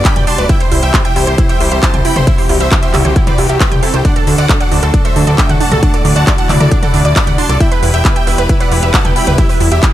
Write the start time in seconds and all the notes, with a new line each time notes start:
Already playing: B2 D3 G3 D4 F#4
0.05 D4 G5 B5, kick, clap, closed hi-hat
0.16 G1 D5 G5, closed hi-hat, mid tom
0.27 D4 A5 C6, open hi-hat
0.38 D1 B4 D5, closed hi-hat
0.49 C3 E3 E4 G4 E5 G5, kick, closed hi-hat
0.60 C5, closed hi-hat
0.72 C2 E4 C5, open hi-hat
0.83 C2 E5 G5, closed hi-hat
0.94 E4 C5, kick, clap, closed hi-hat
1.05 E5 G5, closed hi-hat
1.16 C2 E4 C5, open hi-hat
1.27 C2 C5, closed hi-hat
1.38 E4 C5, kick, closed hi-hat
1.49 C5 E5 G5, closed hi-hat
1.60 C2 E4 C5, open hi-hat
1.72 C2 C5 E5, closed hi-hat
1.83 E4 C5 A5, kick, clap, closed hi-hat
1.94 C2 C5 G5, closed hi-hat, mid tom
2.05 E4 G5 B5, open hi-hat
2.16 G1 C5, closed hi-hat, mid tom
2.27 E4 F#4 C5 E5, kick, closed hi-hat
2.38 G4 C5, open hi-hat
2.49 C2 E4 G4, open hi-hat
2.60 C2 C5 E5, closed hi-hat
2.71 E4 G4, kick, clap, closed hi-hat
2.83 C5 E5 G5, closed hi-hat
2.94 C2 E4 G4, clap, open hi-hat, mid tom
3.05 C2 G4 C5, closed hi-hat, mid tom
3.16 E4 G4, kick, closed hi-hat
3.27 B4 C5 D5, closed hi-hat, mid tom
3.38 C2 E4 G4, open hi-hat
3.49 C2 G4 E5, closed hi-hat
3.60 E4 G4 B4, kick, clap, closed hi-hat
3.71 C2 G4 G5, closed hi-hat, mid tom
3.83 C4 E4 A4, open hi-hat
3.94 C2 G4 C5, closed hi-hat
4.05 A2 D3 F#3 D4 F#4 D5 F#5, kick, closed hi-hat
4.16 A4, closed hi-hat
4.27 D2 D4 A4, open hi-hat
4.38 D2 D5 F#5, closed hi-hat
4.49 D4 A4, kick, clap, closed hi-hat
4.60 D5 F#5, closed hi-hat
4.71 D2 D4 A4, open hi-hat
4.82 D2 A4, closed hi-hat
4.94 D4 A4, kick, closed hi-hat
5.05 A4 C5 E5, closed hi-hat
5.16 D2 D4 A4, open hi-hat
5.27 D2 A4 D5, closed hi-hat
5.38 D4 E5 G5, kick, clap, closed hi-hat
5.49 D2 A4 F#5, closed hi-hat, mid tom
5.60 D4 F#5 A5, open hi-hat
5.71 C2 A4, closed hi-hat, mid tom
5.83 D4 E4 F#5 A5, kick, closed hi-hat
5.94 A4 D5, closed hi-hat
6.05 D2 D4 D5, open hi-hat
6.16 D2 D5 F#5 A5, closed hi-hat
6.27 D4 D5, kick, clap, closed hi-hat
6.38 F#5 A5, closed hi-hat
6.49 D2 D4 D5, clap, open hi-hat, mid tom
6.60 D2 A4 D5, closed hi-hat, mid tom
6.71 D4 D5, kick, closed hi-hat
6.82 A4 D5 F#5, closed hi-hat, mid tom
6.94 D2 D4 D5, open hi-hat
7.05 D2 D5, closed hi-hat
7.16 D4 D5 B5, kick, clap, closed hi-hat
7.27 D2 D5 F#5, closed hi-hat, mid tom
7.38 D4 A5 C6, open hi-hat
7.49 C2 A4 D5, closed hi-hat
7.60 B2 E3 G3 E4 G4 E5 G5, kick, closed hi-hat
7.71 B4, closed hi-hat
7.83 E1 E4 B4, open hi-hat
7.94 E1 E5 G5, closed hi-hat
8.05 E4 B4, kick, clap, closed hi-hat
8.16 E5 G5, closed hi-hat
8.27 E1 E4 B4, open hi-hat
8.38 E1 B4, closed hi-hat
8.49 E4 B4, kick, closed hi-hat
8.60 B4 D5 F#5, closed hi-hat
8.71 E1 E4 B4, open hi-hat
8.83 E1 B4 E5, closed hi-hat
8.94 E4 F#5 A5, kick, clap, closed hi-hat
9.05 E1 B4 G5, closed hi-hat, mid tom
9.16 E4 G5 B5, open hi-hat
9.27 D1 B4, closed hi-hat, mid tom
9.38 E4 G4 E5, kick, closed hi-hat
9.49 E4 B4, open hi-hat
9.60 E1 E4, open hi-hat
9.72 E1 G4 E5, closed hi-hat
9.82 E4, kick, clap, closed hi-hat